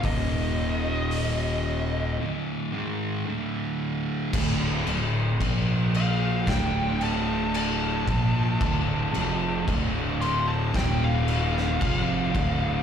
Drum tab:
CC |----------------|x-x-x-x-x-x-x-x-|x-x-x-x-x-x-x-x-|
HH |o---o-----------|----------------|----------------|
SD |----------------|--------o-------|--------o--o----|
BD |o---------------|o---o---o-----o-|o---o---o---o-o-|